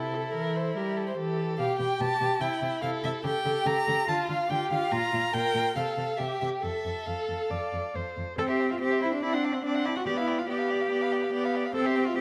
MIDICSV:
0, 0, Header, 1, 5, 480
1, 0, Start_track
1, 0, Tempo, 417246
1, 1825, Time_signature, 4, 2, 24, 8
1, 6627, Tempo, 438276
1, 9507, Tempo, 418410
1, 13887, End_track
2, 0, Start_track
2, 0, Title_t, "Violin"
2, 0, Program_c, 0, 40
2, 0, Note_on_c, 0, 69, 66
2, 377, Note_off_c, 0, 69, 0
2, 383, Note_on_c, 0, 70, 68
2, 642, Note_on_c, 0, 72, 66
2, 659, Note_off_c, 0, 70, 0
2, 859, Note_off_c, 0, 72, 0
2, 866, Note_on_c, 0, 70, 61
2, 1117, Note_on_c, 0, 69, 62
2, 1134, Note_off_c, 0, 70, 0
2, 1232, Note_off_c, 0, 69, 0
2, 1240, Note_on_c, 0, 72, 58
2, 1332, Note_off_c, 0, 72, 0
2, 1811, Note_on_c, 0, 77, 77
2, 2038, Note_off_c, 0, 77, 0
2, 2058, Note_on_c, 0, 79, 81
2, 2305, Note_on_c, 0, 81, 96
2, 2323, Note_off_c, 0, 79, 0
2, 2765, Note_on_c, 0, 79, 76
2, 2782, Note_off_c, 0, 81, 0
2, 3232, Note_off_c, 0, 79, 0
2, 3239, Note_on_c, 0, 77, 80
2, 3331, Note_off_c, 0, 77, 0
2, 3493, Note_on_c, 0, 76, 78
2, 3585, Note_off_c, 0, 76, 0
2, 3722, Note_on_c, 0, 79, 90
2, 4215, Note_on_c, 0, 82, 104
2, 4232, Note_off_c, 0, 79, 0
2, 4698, Note_on_c, 0, 81, 83
2, 4715, Note_off_c, 0, 82, 0
2, 4930, Note_off_c, 0, 81, 0
2, 4937, Note_on_c, 0, 77, 75
2, 5180, Note_on_c, 0, 79, 77
2, 5197, Note_off_c, 0, 77, 0
2, 5411, Note_off_c, 0, 79, 0
2, 5418, Note_on_c, 0, 77, 81
2, 5654, Note_on_c, 0, 82, 91
2, 5671, Note_off_c, 0, 77, 0
2, 6137, Note_on_c, 0, 79, 99
2, 6154, Note_off_c, 0, 82, 0
2, 6623, Note_on_c, 0, 77, 73
2, 6640, Note_off_c, 0, 79, 0
2, 7074, Note_on_c, 0, 76, 64
2, 7090, Note_off_c, 0, 77, 0
2, 7324, Note_off_c, 0, 76, 0
2, 7334, Note_on_c, 0, 76, 64
2, 7422, Note_off_c, 0, 76, 0
2, 7571, Note_on_c, 0, 76, 63
2, 8053, Note_on_c, 0, 77, 51
2, 8069, Note_off_c, 0, 76, 0
2, 9266, Note_off_c, 0, 77, 0
2, 9504, Note_on_c, 0, 79, 49
2, 9610, Note_on_c, 0, 84, 46
2, 9627, Note_off_c, 0, 79, 0
2, 9754, Note_on_c, 0, 79, 43
2, 9772, Note_off_c, 0, 84, 0
2, 9868, Note_on_c, 0, 84, 44
2, 9885, Note_off_c, 0, 79, 0
2, 9974, Note_off_c, 0, 84, 0
2, 9981, Note_on_c, 0, 79, 48
2, 10094, Note_on_c, 0, 84, 41
2, 10111, Note_off_c, 0, 79, 0
2, 10215, Note_on_c, 0, 79, 48
2, 10233, Note_off_c, 0, 84, 0
2, 10354, Note_on_c, 0, 84, 44
2, 10372, Note_off_c, 0, 79, 0
2, 10461, Note_off_c, 0, 84, 0
2, 10468, Note_on_c, 0, 81, 49
2, 10598, Note_on_c, 0, 84, 46
2, 10615, Note_off_c, 0, 81, 0
2, 10705, Note_on_c, 0, 81, 46
2, 10722, Note_off_c, 0, 84, 0
2, 10844, Note_on_c, 0, 84, 36
2, 10862, Note_off_c, 0, 81, 0
2, 10962, Note_off_c, 0, 84, 0
2, 10974, Note_on_c, 0, 81, 50
2, 11101, Note_on_c, 0, 84, 47
2, 11119, Note_off_c, 0, 81, 0
2, 11212, Note_on_c, 0, 81, 51
2, 11229, Note_off_c, 0, 84, 0
2, 11305, Note_on_c, 0, 84, 45
2, 11322, Note_off_c, 0, 81, 0
2, 11418, Note_off_c, 0, 84, 0
2, 11425, Note_on_c, 0, 79, 46
2, 11555, Note_on_c, 0, 83, 47
2, 11573, Note_off_c, 0, 79, 0
2, 11675, Note_on_c, 0, 79, 49
2, 11693, Note_off_c, 0, 83, 0
2, 11804, Note_on_c, 0, 83, 43
2, 11821, Note_off_c, 0, 79, 0
2, 11902, Note_off_c, 0, 83, 0
2, 11909, Note_on_c, 0, 79, 52
2, 12030, Note_on_c, 0, 83, 40
2, 12047, Note_off_c, 0, 79, 0
2, 12143, Note_on_c, 0, 79, 43
2, 12160, Note_off_c, 0, 83, 0
2, 12259, Note_on_c, 0, 83, 47
2, 12276, Note_off_c, 0, 79, 0
2, 12389, Note_off_c, 0, 83, 0
2, 12406, Note_on_c, 0, 79, 49
2, 12519, Note_on_c, 0, 83, 53
2, 12536, Note_off_c, 0, 79, 0
2, 12635, Note_on_c, 0, 79, 45
2, 12652, Note_off_c, 0, 83, 0
2, 12748, Note_on_c, 0, 83, 45
2, 12765, Note_off_c, 0, 79, 0
2, 12864, Note_off_c, 0, 83, 0
2, 12871, Note_on_c, 0, 79, 55
2, 13001, Note_on_c, 0, 83, 45
2, 13018, Note_off_c, 0, 79, 0
2, 13121, Note_on_c, 0, 79, 53
2, 13138, Note_off_c, 0, 83, 0
2, 13233, Note_on_c, 0, 83, 49
2, 13250, Note_off_c, 0, 79, 0
2, 13348, Note_off_c, 0, 83, 0
2, 13355, Note_on_c, 0, 79, 56
2, 13480, Note_on_c, 0, 84, 55
2, 13497, Note_off_c, 0, 79, 0
2, 13599, Note_on_c, 0, 79, 51
2, 13616, Note_off_c, 0, 84, 0
2, 13714, Note_on_c, 0, 84, 45
2, 13731, Note_off_c, 0, 79, 0
2, 13832, Note_off_c, 0, 84, 0
2, 13838, Note_on_c, 0, 79, 55
2, 13887, Note_off_c, 0, 79, 0
2, 13887, End_track
3, 0, Start_track
3, 0, Title_t, "Violin"
3, 0, Program_c, 1, 40
3, 0, Note_on_c, 1, 64, 52
3, 1316, Note_off_c, 1, 64, 0
3, 1350, Note_on_c, 1, 69, 59
3, 1837, Note_on_c, 1, 67, 58
3, 1854, Note_off_c, 1, 69, 0
3, 2771, Note_on_c, 1, 64, 58
3, 2789, Note_off_c, 1, 67, 0
3, 3241, Note_on_c, 1, 69, 68
3, 3258, Note_off_c, 1, 64, 0
3, 3728, Note_on_c, 1, 67, 66
3, 3745, Note_off_c, 1, 69, 0
3, 4678, Note_off_c, 1, 67, 0
3, 4685, Note_on_c, 1, 65, 66
3, 5164, Note_off_c, 1, 65, 0
3, 5174, Note_on_c, 1, 67, 64
3, 5661, Note_on_c, 1, 65, 66
3, 5679, Note_off_c, 1, 67, 0
3, 6138, Note_off_c, 1, 65, 0
3, 6145, Note_on_c, 1, 70, 73
3, 6620, Note_off_c, 1, 70, 0
3, 6628, Note_on_c, 1, 69, 65
3, 7089, Note_on_c, 1, 67, 60
3, 7106, Note_off_c, 1, 69, 0
3, 7573, Note_on_c, 1, 69, 57
3, 7589, Note_off_c, 1, 67, 0
3, 9268, Note_off_c, 1, 69, 0
3, 9500, Note_on_c, 1, 72, 49
3, 9618, Note_on_c, 1, 76, 47
3, 9635, Note_off_c, 1, 72, 0
3, 9743, Note_on_c, 1, 72, 43
3, 9760, Note_off_c, 1, 76, 0
3, 9861, Note_on_c, 1, 76, 49
3, 9878, Note_off_c, 1, 72, 0
3, 9973, Note_off_c, 1, 76, 0
3, 9979, Note_on_c, 1, 72, 56
3, 10103, Note_on_c, 1, 76, 43
3, 10120, Note_off_c, 1, 72, 0
3, 10226, Note_on_c, 1, 72, 53
3, 10243, Note_off_c, 1, 76, 0
3, 10339, Note_on_c, 1, 76, 43
3, 10357, Note_off_c, 1, 72, 0
3, 10460, Note_off_c, 1, 76, 0
3, 10467, Note_on_c, 1, 74, 51
3, 10582, Note_on_c, 1, 78, 47
3, 10600, Note_off_c, 1, 74, 0
3, 10713, Note_on_c, 1, 74, 42
3, 10730, Note_off_c, 1, 78, 0
3, 10826, Note_on_c, 1, 78, 37
3, 10844, Note_off_c, 1, 74, 0
3, 10948, Note_off_c, 1, 78, 0
3, 10955, Note_on_c, 1, 74, 53
3, 11065, Note_on_c, 1, 78, 51
3, 11082, Note_off_c, 1, 74, 0
3, 11186, Note_on_c, 1, 74, 51
3, 11203, Note_off_c, 1, 78, 0
3, 11310, Note_on_c, 1, 78, 49
3, 11327, Note_off_c, 1, 74, 0
3, 11422, Note_off_c, 1, 78, 0
3, 11428, Note_on_c, 1, 74, 45
3, 11548, Note_on_c, 1, 77, 42
3, 11565, Note_off_c, 1, 74, 0
3, 11665, Note_on_c, 1, 74, 45
3, 11682, Note_off_c, 1, 77, 0
3, 11790, Note_on_c, 1, 77, 46
3, 11808, Note_off_c, 1, 74, 0
3, 11908, Note_off_c, 1, 77, 0
3, 11915, Note_on_c, 1, 74, 48
3, 12023, Note_on_c, 1, 77, 44
3, 12040, Note_off_c, 1, 74, 0
3, 12154, Note_on_c, 1, 74, 50
3, 12171, Note_off_c, 1, 77, 0
3, 12282, Note_on_c, 1, 77, 48
3, 12299, Note_off_c, 1, 74, 0
3, 12391, Note_off_c, 1, 77, 0
3, 12398, Note_on_c, 1, 74, 46
3, 12524, Note_on_c, 1, 77, 50
3, 12542, Note_off_c, 1, 74, 0
3, 12641, Note_on_c, 1, 74, 39
3, 12658, Note_off_c, 1, 77, 0
3, 12760, Note_on_c, 1, 77, 42
3, 12778, Note_off_c, 1, 74, 0
3, 12873, Note_off_c, 1, 77, 0
3, 12879, Note_on_c, 1, 74, 53
3, 13014, Note_on_c, 1, 77, 46
3, 13031, Note_off_c, 1, 74, 0
3, 13139, Note_on_c, 1, 74, 46
3, 13156, Note_off_c, 1, 77, 0
3, 13254, Note_on_c, 1, 77, 49
3, 13271, Note_off_c, 1, 74, 0
3, 13355, Note_off_c, 1, 77, 0
3, 13362, Note_on_c, 1, 72, 52
3, 13481, Note_on_c, 1, 76, 46
3, 13498, Note_off_c, 1, 72, 0
3, 13599, Note_on_c, 1, 72, 48
3, 13616, Note_off_c, 1, 76, 0
3, 13717, Note_on_c, 1, 76, 52
3, 13734, Note_off_c, 1, 72, 0
3, 13833, Note_off_c, 1, 76, 0
3, 13839, Note_on_c, 1, 72, 58
3, 13887, Note_off_c, 1, 72, 0
3, 13887, End_track
4, 0, Start_track
4, 0, Title_t, "Viola"
4, 0, Program_c, 2, 41
4, 0, Note_on_c, 2, 64, 47
4, 158, Note_on_c, 2, 69, 45
4, 176, Note_off_c, 2, 64, 0
4, 880, Note_on_c, 2, 67, 43
4, 897, Note_off_c, 2, 69, 0
4, 1340, Note_off_c, 2, 67, 0
4, 1347, Note_on_c, 2, 67, 57
4, 1816, Note_off_c, 2, 67, 0
4, 1825, Note_on_c, 2, 67, 56
4, 2057, Note_off_c, 2, 67, 0
4, 2069, Note_on_c, 2, 67, 51
4, 2292, Note_off_c, 2, 67, 0
4, 2299, Note_on_c, 2, 67, 50
4, 2531, Note_off_c, 2, 67, 0
4, 2537, Note_on_c, 2, 67, 49
4, 2769, Note_off_c, 2, 67, 0
4, 2779, Note_on_c, 2, 64, 52
4, 2999, Note_off_c, 2, 64, 0
4, 3006, Note_on_c, 2, 64, 46
4, 3237, Note_off_c, 2, 64, 0
4, 3244, Note_on_c, 2, 64, 61
4, 3481, Note_off_c, 2, 64, 0
4, 3488, Note_on_c, 2, 64, 50
4, 3722, Note_off_c, 2, 64, 0
4, 3728, Note_on_c, 2, 69, 62
4, 3964, Note_off_c, 2, 69, 0
4, 3972, Note_on_c, 2, 69, 59
4, 4203, Note_off_c, 2, 69, 0
4, 4210, Note_on_c, 2, 69, 53
4, 4437, Note_off_c, 2, 69, 0
4, 4444, Note_on_c, 2, 69, 52
4, 4684, Note_off_c, 2, 69, 0
4, 4690, Note_on_c, 2, 65, 55
4, 4929, Note_off_c, 2, 65, 0
4, 4939, Note_on_c, 2, 65, 50
4, 5172, Note_off_c, 2, 65, 0
4, 5179, Note_on_c, 2, 65, 60
4, 5415, Note_off_c, 2, 65, 0
4, 5422, Note_on_c, 2, 65, 58
4, 5657, Note_off_c, 2, 65, 0
4, 5663, Note_on_c, 2, 65, 72
4, 5898, Note_off_c, 2, 65, 0
4, 5903, Note_on_c, 2, 65, 53
4, 6134, Note_off_c, 2, 65, 0
4, 6141, Note_on_c, 2, 65, 46
4, 6380, Note_off_c, 2, 65, 0
4, 6395, Note_on_c, 2, 65, 50
4, 6629, Note_off_c, 2, 65, 0
4, 6634, Note_on_c, 2, 69, 54
4, 6851, Note_off_c, 2, 69, 0
4, 6858, Note_on_c, 2, 69, 48
4, 7091, Note_off_c, 2, 69, 0
4, 7099, Note_on_c, 2, 67, 53
4, 7332, Note_off_c, 2, 67, 0
4, 7341, Note_on_c, 2, 67, 41
4, 7565, Note_off_c, 2, 67, 0
4, 7572, Note_on_c, 2, 69, 53
4, 7804, Note_off_c, 2, 69, 0
4, 7811, Note_on_c, 2, 69, 41
4, 8044, Note_off_c, 2, 69, 0
4, 8050, Note_on_c, 2, 69, 53
4, 8542, Note_on_c, 2, 74, 56
4, 8558, Note_off_c, 2, 69, 0
4, 9030, Note_on_c, 2, 72, 46
4, 9047, Note_off_c, 2, 74, 0
4, 9499, Note_off_c, 2, 72, 0
4, 9506, Note_on_c, 2, 60, 68
4, 9934, Note_off_c, 2, 60, 0
4, 9984, Note_on_c, 2, 60, 64
4, 10413, Note_off_c, 2, 60, 0
4, 10473, Note_on_c, 2, 60, 64
4, 10901, Note_off_c, 2, 60, 0
4, 10954, Note_on_c, 2, 60, 65
4, 11380, Note_off_c, 2, 60, 0
4, 11439, Note_on_c, 2, 59, 68
4, 11861, Note_off_c, 2, 59, 0
4, 11914, Note_on_c, 2, 59, 60
4, 12340, Note_off_c, 2, 59, 0
4, 12391, Note_on_c, 2, 59, 62
4, 12817, Note_off_c, 2, 59, 0
4, 12879, Note_on_c, 2, 59, 75
4, 13298, Note_off_c, 2, 59, 0
4, 13351, Note_on_c, 2, 60, 82
4, 13772, Note_off_c, 2, 60, 0
4, 13834, Note_on_c, 2, 60, 67
4, 13887, Note_off_c, 2, 60, 0
4, 13887, End_track
5, 0, Start_track
5, 0, Title_t, "Cello"
5, 0, Program_c, 3, 42
5, 0, Note_on_c, 3, 48, 43
5, 381, Note_off_c, 3, 48, 0
5, 386, Note_on_c, 3, 52, 53
5, 857, Note_off_c, 3, 52, 0
5, 874, Note_on_c, 3, 55, 54
5, 1340, Note_off_c, 3, 55, 0
5, 1352, Note_on_c, 3, 52, 55
5, 1818, Note_off_c, 3, 52, 0
5, 1831, Note_on_c, 3, 47, 58
5, 1923, Note_off_c, 3, 47, 0
5, 2065, Note_on_c, 3, 47, 49
5, 2157, Note_off_c, 3, 47, 0
5, 2300, Note_on_c, 3, 47, 62
5, 2392, Note_off_c, 3, 47, 0
5, 2543, Note_on_c, 3, 47, 58
5, 2635, Note_off_c, 3, 47, 0
5, 2767, Note_on_c, 3, 48, 56
5, 2859, Note_off_c, 3, 48, 0
5, 3007, Note_on_c, 3, 48, 57
5, 3099, Note_off_c, 3, 48, 0
5, 3253, Note_on_c, 3, 48, 59
5, 3345, Note_off_c, 3, 48, 0
5, 3496, Note_on_c, 3, 48, 63
5, 3588, Note_off_c, 3, 48, 0
5, 3727, Note_on_c, 3, 49, 56
5, 3819, Note_off_c, 3, 49, 0
5, 3974, Note_on_c, 3, 49, 53
5, 4066, Note_off_c, 3, 49, 0
5, 4209, Note_on_c, 3, 49, 62
5, 4301, Note_off_c, 3, 49, 0
5, 4463, Note_on_c, 3, 49, 58
5, 4555, Note_off_c, 3, 49, 0
5, 4692, Note_on_c, 3, 50, 64
5, 4784, Note_off_c, 3, 50, 0
5, 4931, Note_on_c, 3, 50, 60
5, 5023, Note_off_c, 3, 50, 0
5, 5180, Note_on_c, 3, 50, 63
5, 5272, Note_off_c, 3, 50, 0
5, 5414, Note_on_c, 3, 50, 62
5, 5506, Note_off_c, 3, 50, 0
5, 5661, Note_on_c, 3, 46, 59
5, 5753, Note_off_c, 3, 46, 0
5, 5905, Note_on_c, 3, 46, 53
5, 5997, Note_off_c, 3, 46, 0
5, 6140, Note_on_c, 3, 46, 66
5, 6232, Note_off_c, 3, 46, 0
5, 6384, Note_on_c, 3, 46, 53
5, 6476, Note_off_c, 3, 46, 0
5, 6626, Note_on_c, 3, 48, 59
5, 6714, Note_off_c, 3, 48, 0
5, 6861, Note_on_c, 3, 48, 50
5, 6949, Note_off_c, 3, 48, 0
5, 7107, Note_on_c, 3, 48, 50
5, 7195, Note_off_c, 3, 48, 0
5, 7345, Note_on_c, 3, 48, 51
5, 7433, Note_off_c, 3, 48, 0
5, 7584, Note_on_c, 3, 41, 52
5, 7672, Note_off_c, 3, 41, 0
5, 7827, Note_on_c, 3, 41, 47
5, 7914, Note_off_c, 3, 41, 0
5, 8062, Note_on_c, 3, 41, 52
5, 8150, Note_off_c, 3, 41, 0
5, 8298, Note_on_c, 3, 41, 39
5, 8386, Note_off_c, 3, 41, 0
5, 8538, Note_on_c, 3, 41, 54
5, 8625, Note_off_c, 3, 41, 0
5, 8787, Note_on_c, 3, 41, 47
5, 8875, Note_off_c, 3, 41, 0
5, 9025, Note_on_c, 3, 41, 48
5, 9113, Note_off_c, 3, 41, 0
5, 9268, Note_on_c, 3, 41, 44
5, 9356, Note_off_c, 3, 41, 0
5, 9500, Note_on_c, 3, 69, 86
5, 9550, Note_off_c, 3, 69, 0
5, 9633, Note_on_c, 3, 67, 65
5, 9866, Note_off_c, 3, 67, 0
5, 9873, Note_on_c, 3, 65, 61
5, 9921, Note_off_c, 3, 65, 0
5, 9981, Note_on_c, 3, 67, 92
5, 10222, Note_off_c, 3, 67, 0
5, 10230, Note_on_c, 3, 64, 77
5, 10350, Note_off_c, 3, 64, 0
5, 10359, Note_on_c, 3, 62, 65
5, 10466, Note_on_c, 3, 64, 89
5, 10484, Note_off_c, 3, 62, 0
5, 10595, Note_on_c, 3, 62, 75
5, 10612, Note_off_c, 3, 64, 0
5, 10834, Note_on_c, 3, 60, 63
5, 10851, Note_off_c, 3, 62, 0
5, 10939, Note_off_c, 3, 60, 0
5, 10946, Note_on_c, 3, 62, 74
5, 11186, Note_on_c, 3, 64, 72
5, 11203, Note_off_c, 3, 62, 0
5, 11305, Note_off_c, 3, 64, 0
5, 11312, Note_on_c, 3, 66, 73
5, 11361, Note_off_c, 3, 66, 0
5, 11427, Note_on_c, 3, 67, 77
5, 11478, Note_off_c, 3, 67, 0
5, 11549, Note_on_c, 3, 64, 71
5, 11797, Note_on_c, 3, 65, 66
5, 11814, Note_off_c, 3, 64, 0
5, 11906, Note_off_c, 3, 65, 0
5, 11913, Note_on_c, 3, 67, 78
5, 13089, Note_off_c, 3, 67, 0
5, 13355, Note_on_c, 3, 69, 83
5, 13480, Note_on_c, 3, 67, 81
5, 13498, Note_off_c, 3, 69, 0
5, 13719, Note_on_c, 3, 65, 74
5, 13736, Note_off_c, 3, 67, 0
5, 13828, Note_on_c, 3, 67, 95
5, 13846, Note_off_c, 3, 65, 0
5, 13887, Note_off_c, 3, 67, 0
5, 13887, End_track
0, 0, End_of_file